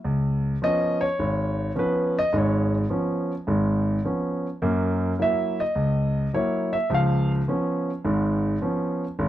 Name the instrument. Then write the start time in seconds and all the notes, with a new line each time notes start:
grand piano
0.04 C#2
0.62 F3 B3 C#4 D#5
1.01 C#5
1.19 G#1
1.76 F3 B3 C#4 B4
2.19 D#5
2.33 G#1 G#2
2.38 C#5
2.90 F3 B3 C#4
3.47 G#1 G#2
4.05 F3 B3 C#4
4.62 F#2 A#3
5.19 F#3 A#3 E4 E5
5.60 D#5
5.75 C#2
6.33 F#3 A#3 E4 C#5
6.73 E5
6.90 C#2 F3
6.94 F5
7.48 F3 B3 C#4
8.05 G#1 G#2
8.61 F3 B3 C#4
9.19 G#1